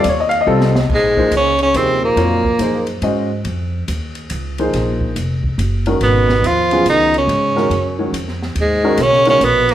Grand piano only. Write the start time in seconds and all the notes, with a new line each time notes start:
0.09 C#5
0.20 D#5
0.29 F5
0.41 D#5
0.47 G3 C4 F4 A4
1.17 F3 A#3 D#4 G#4 C5
1.75 F3 A#3 D#4 G#4 C5
2.17 F#3 C4 F4 A#4 C#5
2.59 F3 A#3 D#4 G#4 C5
3.03 G#3 C#4 F#4 C5 D#5
4.59 F3 A#3 D#4 G#4 C5
5.87 D#3 G#3 C#4 F#4 A#4
6.72 C#3 F#3 B3 F4 G#4
7.56 D#3 G#3 C#4 F#4 A#4
7.98 D#3 G#3 C#4 F#4 C#5
8.84 D#3 G#3 C#4 F#4 A#4
9.26 D#3 G#3 C#4 F#4 A#4